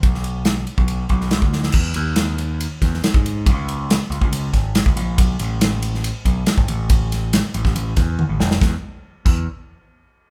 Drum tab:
CC |----------------|x---------------|----------------|----------------|
RD |x-x-x-x-x-x-x---|--x-x-x-x-x-x-x-|x-x-x-x-x-x-x-x-|x-x-x-x-x-x-x-x-|
SD |-o--o------oo-oo|----o-----ooo---|----o-----o-o---|----o--o----o---|
T1 |----------------|----------------|----------------|----------------|
BD |o------o--o--o--|o---------o--o--|o------o--o--o--|o---------o--o--|

CC |----------------|------x---------|
RD |x-x-x-x-x-x-----|----------------|
SD |--o-o--o--o---oo|o---------------|
T1 |------------o---|----------------|
BD |o------o--o-----|o-----o---------|